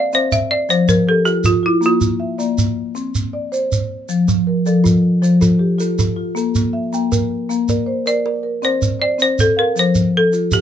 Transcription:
0.00 0.14 D5 medium
0.00 0.50 F5 medium
0.13 0.51 C4 medium
0.13 0.33 C5 loud
0.13 0.70 E5 medium
0.13 shekere medium
0.32 0.52 E5 medium
0.32 shekere medium
0.51 0.68 D5 medium
0.69 1.07 F3 medium
0.69 0.89 C5 medium
0.69 shekere medium
0.88 1.06 A#4 medium
0.88 shekere medium
1.07 1.64 G4 medium
1.07 1.27 A4 medium
1.25 1.62 F4 medium
1.25 1.45 G4 medium
1.25 shekere medium
1.44 1.63 F4 medium
1.44 shekere medium
1.63 1.84 E4 medium
1.63 2.01 F4 medium
1.81 2.20 A#3 medium
1.81 shekere medium
1.86 2.37 F4 medium
2.01 shekere medium
2.20 2.77 E5 medium
2.38 2.77 A#3 medium
2.38 2.96 D5 medium
2.38 shekere medium
2.58 shekere medium
2.95 3.33 C4 medium
2.95 shekere medium
3.15 shekere medium
3.33 3.90 D5 medium
3.52 3.90 C5 medium
3.52 shekere medium
3.72 shekere medium
4.09 4.47 F3 medium
4.09 shekere medium
4.28 4.66 F3 medium
4.28 shekere medium
4.47 5.04 A#4 medium
4.66 5.04 F3 medium
4.66 5.23 A4 medium
4.66 5.23 D5 medium
4.66 shekere medium
4.84 5.22 F4 medium
4.84 shekere medium
5.22 5.60 F3 medium
5.22 5.79 C5 medium
5.22 shekere medium
5.41 5.79 F4 medium
5.41 5.79 A4 medium
5.41 shekere medium
5.59 6.17 G4 medium
5.78 6.15 F4 medium
5.78 5.98 A4 medium
5.78 shekere medium
5.99 6.37 F4 medium
5.99 6.36 A4 medium
5.99 shekere medium
6.16 6.55 F4 medium
6.35 6.73 A#3 medium
6.35 6.75 A4 medium
6.35 shekere medium
6.55 6.93 A#3 medium
6.55 shekere medium
6.73 7.30 E5 medium
6.93 7.31 A#3 medium
6.93 7.50 G5 medium
6.93 shekere medium
7.12 7.50 A#4 medium
7.12 shekere medium
7.49 7.87 A#3 medium
7.49 8.06 F5 medium
7.49 shekere medium
7.69 8.07 A#4 medium
7.69 8.24 D5 medium
7.69 shekere medium
7.86 8.44 C5 medium
8.06 8.42 A#4 medium
8.06 8.42 D5 loud
8.06 shekere medium
8.26 8.63 A#4 medium
8.26 8.62 D5 medium
8.43 8.81 A#4 medium
8.62 9.01 C4 medium
8.62 9.03 C5 loud
8.62 9.01 D5 medium
8.62 shekere medium
8.82 shekere medium
9.00 9.57 C5 medium
9.00 9.21 D5 loud
9.18 9.57 C4 medium
9.18 9.39 C5 loud
9.18 shekere medium
9.39 9.59 A4 medium
9.39 shekere medium
9.57 9.78 A#4 medium
9.57 9.95 F5 medium
9.76 10.14 F3 medium
9.76 10.17 C5 medium
9.76 shekere medium
9.95 shekere medium
10.17 10.55 A4 medium
10.33 10.61 F4 medium
10.33 shekere medium
10.52 10.61 G4 medium
10.52 shekere medium

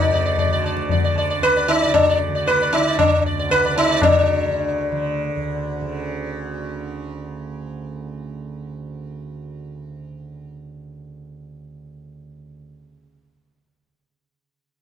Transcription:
0.00 1.38 D2 medium
0.00 1.83 C#3 medium
0.00 0.47 D3 medium
0.00 0.61 D#4 medium
0.00 0.12 D5 soft
0.11 0.24 D5 soft
0.11 tabla ge medium
0.25 0.37 D5 soft
0.38 0.51 D5 soft
0.38 tabla tin medium
0.38 tabla ge medium
0.47 0.93 D3 medium
0.53 0.65 D5 soft
0.64 0.90 D5 soft
0.64 tabla na medium
0.77 tabla ke medium
0.89 2.28 D3 medium
0.89 1.03 D5 soft
0.89 tabla tin medium
0.89 tabla ge medium
1.04 1.17 D5 soft
1.16 1.29 D5 soft
1.16 tabla na medium
1.30 1.54 D5 soft
1.38 3.17 D2 medium
1.43 1.70 B4 loud
1.43 tabla te medium
1.56 1.81 D5 soft
1.68 1.93 D#4 loud
1.68 tabla na medium
1.82 3.63 C#3 medium
1.82 2.06 D5 soft
1.94 2.19 D4 medium
1.94 tabla na loud
1.94 tabla ge medium
2.09 2.33 D5 soft
2.28 2.73 D3 medium
2.35 2.59 D5 soft
2.47 2.71 B4 loud
2.47 tabla te medium
2.62 2.85 D5 soft
2.73 4.46 D3 medium
2.73 2.98 D#4 loud
2.73 tabla na medium
2.88 3.11 D5 soft
2.99 3.23 D4 medium
2.99 tabla na loud
2.99 tabla ge loud
3.18 5.36 D2 medium
3.26 3.38 D5 soft
3.39 3.63 D5 soft
3.50 3.75 B4 loud
3.50 tabla te medium
3.63 4.02 C#3 medium
3.63 3.88 D5 soft
3.76 4.03 D#4 loud
3.76 tabla na medium
3.90 4.14 D5 soft
4.02 5.81 C#3 medium
4.02 7.24 D4 medium
4.02 tabla na loud
4.02 tabla ge loud
4.46 4.92 D3 medium
4.92 12.07 D3 medium
5.36 12.51 D2 medium
5.81 12.96 C#3 medium

